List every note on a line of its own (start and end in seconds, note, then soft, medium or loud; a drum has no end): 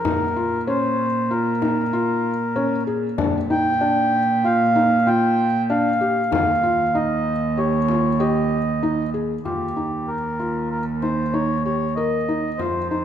0.00 0.63 A#4 medium
0.05 3.19 A#2 medium
0.05 0.23 D#4 medium
0.05 frame drum medium
0.36 0.55 F4 medium
0.67 1.05 C#4 medium
0.67 1.33 C5 medium
1.30 1.49 F4 medium
1.30 2.83 A#4 medium
1.62 1.80 D#4 medium
1.62 frame drum soft
1.93 2.30 F4 medium
2.56 2.74 C#4 medium
2.56 frame drum soft
2.87 3.06 G#4 medium
3.18 6.34 A#2 medium
3.18 3.37 D4 medium
3.18 frame drum medium
3.50 3.69 D#4 medium
3.50 4.47 G5 loud
3.81 4.18 D4 medium
4.44 4.63 F4 medium
4.44 5.09 F5 medium
4.76 4.94 D#4 medium
4.76 frame drum soft
5.07 5.44 F4 medium
5.07 5.66 G5 loud
5.70 5.88 D4 medium
5.70 6.31 F5 medium
5.70 frame drum soft
6.01 6.19 G4 medium
6.31 9.42 D#2 medium
6.31 6.50 D#4 medium
6.31 6.97 F5 medium
6.31 frame drum medium
6.63 6.82 F4 medium
6.95 7.32 D#4 medium
6.95 7.59 D#5 medium
7.57 7.76 G4 medium
7.57 8.22 C#5 medium
7.89 8.08 F4 medium
7.89 frame drum soft
8.20 8.57 G4 medium
8.20 9.10 D#5 medium
8.51 frame drum soft
8.82 9.01 D#4 medium
8.82 frame drum soft
9.14 9.33 G#4 medium
9.45 12.61 D#2 medium
9.45 9.64 F4 medium
9.45 10.10 G4 medium
9.45 frame drum soft
9.76 10.14 D#4 medium
10.08 10.69 A#4 medium
10.08 frame drum soft
10.39 10.77 F4 medium
10.39 frame drum soft
10.71 10.85 A#4 medium
11.02 11.21 D#4 medium
11.02 11.34 C5 medium
11.02 frame drum soft
11.33 11.52 D#4 medium
11.33 11.63 C#5 medium
11.65 11.84 G4 medium
11.65 11.94 C#5 medium
11.95 12.16 A#4 medium
11.95 12.61 D#5 medium
12.29 12.47 D#4 medium
12.58 13.05 F2 medium
12.58 12.78 F4 medium
12.58 12.88 C5 medium
12.58 frame drum soft
12.89 13.05 D#4 medium
12.89 13.04 C5 medium